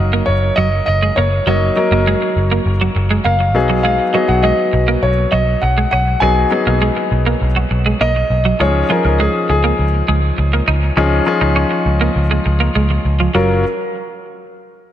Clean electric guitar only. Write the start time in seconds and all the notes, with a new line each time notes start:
0.13 A#3
0.58 F#3
0.88 muted clean electric guitar stroke
1.03 G#3
1.18 A#3
1.47 F#3
1.77 muted clean electric guitar stroke
1.92 A#3
2.07 G#3
2.22 muted clean electric guitar stroke
2.52 A#3
2.81 F#3
2.96 muted clean electric guitar stroke
3.11 G#3
3.25 A#3
3.40 muted clean electric guitar stroke
3.70 F#3
3.85 G#3
4.14 F#3
4.29 muted clean electric guitar stroke
4.44 G#3
4.73 muted clean electric guitar stroke
4.88 A#3
5.32 F#3
5.63 muted clean electric guitar stroke
5.78 G#3
5.93 C#4
6.22 B3
6.52 muted clean electric guitar stroke
6.67 A#3
6.82 G#3
6.97 muted clean electric guitar stroke
7.27 A#3
7.56 F#3
7.71 muted clean electric guitar stroke
7.86 G#3
8.01 A#3
8.16 muted clean electric guitar stroke
8.45 F#3
8.60 G#3
8.90 F3
9.05 muted clean electric guitar stroke
9.20 G#3
9.50 muted clean electric guitar stroke
9.64 A#3
10.08 G#3
10.38 muted clean electric guitar stroke
10.53 A#3
10.68 D#4
10.97 C#4
11.27 muted clean electric guitar stroke
11.41 D#4
11.56 C#4
11.71 muted clean electric guitar stroke
12.01 A#3
12.31 G#3
12.46 muted clean electric guitar stroke
12.60 A#3
12.75 G#3
12.91 muted clean electric guitar stroke
13.20 F3
13.35 F#3